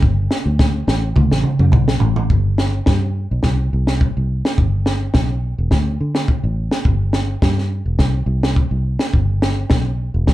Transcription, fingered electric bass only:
0.02 0.27 G1 medium
0.46 0.82 D2 medium
0.87 1.12 A1 medium
1.16 1.30 D2 loud
1.31 1.43 A1 medium
1.59 1.71 F#2 medium
1.73 1.98 B1 medium
2.01 2.27 A1 medium
2.30 2.80 G1 medium
2.87 3.25 G2 medium
3.31 3.42 B1 medium
3.44 3.69 C2 medium
3.73 4.11 C2 medium
4.17 4.42 C2 medium
4.58 5.08 G1 medium
5.14 5.53 B1 medium
5.58 5.70 E1 medium
5.72 5.97 D2 medium
6.01 6.25 D3 medium
6.44 6.69 A1 medium
6.85 7.35 G1 medium
7.42 7.81 G2 medium
7.86 7.98 E1 medium
7.99 8.24 C2 medium
8.26 8.66 C2 medium
8.71 8.96 C2 medium
9.14 9.64 G1 medium
9.71 10.09 B1 medium
10.14 10.26 E1 medium
10.28 10.34 D2 medium

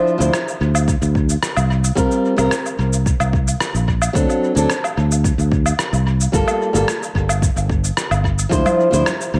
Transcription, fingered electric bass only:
0.20 0.29 D2 medium
0.61 0.94 D2 medium
1.02 1.35 D2 medium
1.57 1.90 C2 medium
1.97 2.06 C2 medium
2.38 2.47 C2 medium
2.79 3.12 C2 medium
3.20 3.53 C2 loud
3.74 4.08 A#1 medium
4.15 4.24 D2 medium
4.56 4.65 D2 medium
4.97 5.31 D2 medium
5.38 5.71 D2 medium
5.93 6.26 C2 medium
6.33 6.42 G1 loud
6.74 6.83 G1 medium
7.15 7.49 G1 medium
7.56 7.89 G1 medium
8.11 8.44 G1 medium
8.52 8.61 D2 medium
8.93 9.02 D2 medium
9.34 9.40 D2 medium

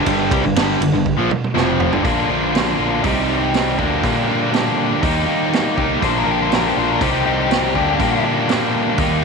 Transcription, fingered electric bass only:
0.06 0.30 G1 medium
0.31 0.43 C2 medium
0.44 0.55 G1 medium
0.56 0.79 G1 medium
0.81 0.92 G1 medium
0.93 1.16 G1 medium
1.18 1.30 A#1 medium
1.55 1.90 F1 medium
1.92 2.04 G1 medium
2.05 2.27 A#1 medium
2.29 2.74 A#1 medium
2.79 3.01 A#1 medium
3.04 3.79 C2 medium
3.79 4.01 D2 medium
4.03 4.92 A#2 medium
5.03 5.25 D#2 medium
5.77 5.99 C2 medium
6.02 6.24 A#1 medium
6.27 6.71 A#1 medium
6.77 6.98 A#1 medium
7.01 7.75 C2 medium
7.75 7.97 D2 medium
8.00 8.89 A#2 medium
8.98 9.21 D#2 medium

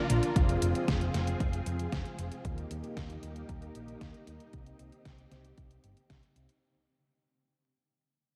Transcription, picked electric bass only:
0.10 0.20 A#1 medium
0.36 0.55 F1 medium
0.62 0.72 F1 medium
0.88 1.07 F1 medium
1.14 1.34 F1 medium
1.40 1.60 F1 medium
1.66 1.86 F2 medium
1.93 2.02 F1 medium
2.19 2.28 F1 medium
2.45 2.64 D#2 medium
2.71 2.80 D#2 medium
2.97 3.16 D#2 medium
3.23 3.42 D#2 medium
3.49 3.68 D#2 medium
3.75 3.94 A#1 medium
4.01 4.11 D#2 medium
4.27 4.37 D#2 medium
4.53 4.73 C2 medium
4.80 4.89 C2 medium
5.06 5.25 C2 medium
5.32 5.51 C2 medium
5.58 5.77 C2 medium
5.84 5.94 G1 medium
6.10 6.20 C2 medium
6.36 6.46 C2 medium

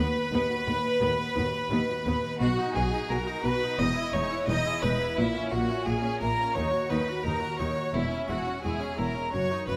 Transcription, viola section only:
0.33 0.41 B3 medium
0.68 0.76 B3 medium
1.02 1.10 B3 medium
1.36 1.44 B3 medium
1.71 1.79 B3 medium
2.06 2.14 B3 medium
2.41 2.57 F#4 medium
2.58 2.75 D#4 medium
2.75 2.93 F#4 medium
2.93 3.10 D#4 medium
3.10 3.26 F#4 medium
3.27 3.45 D#4 medium
3.44 3.62 F#4 medium
3.62 3.78 D#4 medium
3.79 3.95 D#4 medium
3.97 4.14 E4 medium
4.14 4.32 D#4 medium
4.32 4.49 E4 medium
4.49 4.65 D#4 medium
4.66 4.83 E4 medium
4.83 5.01 D#4 medium
5.01 5.18 E4 medium
5.18 5.34 A#3 medium
5.36 5.53 C#4 medium
5.52 5.70 A#3 medium
5.70 5.87 C#4 medium
5.87 6.03 A#3 medium
6.04 6.21 C#4 medium
6.21 6.38 A#3 medium
6.39 6.56 C#4 medium
6.56 6.72 D#4 medium
6.73 6.91 F#4 medium
6.90 7.08 D#4 medium
7.08 7.25 F#4 medium
7.26 7.42 D#4 medium
7.43 7.60 F#4 medium
7.60 7.77 D#4 medium
7.77 7.94 F#4 medium
7.94 8.11 E4 medium
8.12 8.29 C#4 medium
8.29 8.47 E4 medium
8.47 8.64 C#4 medium
8.64 8.80 E4 medium
8.81 8.99 C#4 medium
8.98 9.16 E4 medium
9.16 9.33 C#4 medium
9.33 9.49 F#4 medium
9.51 9.68 D#4 medium
9.68 9.77 F#4 medium

